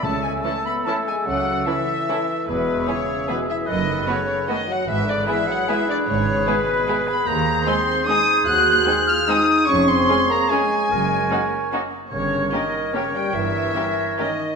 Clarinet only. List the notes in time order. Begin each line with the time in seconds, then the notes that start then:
0.04 A4
2.48 G#4
3.69 A4
4.88 G#4
7.28 G#4
9.69 G#4
10.91 A#4
12.12 A#4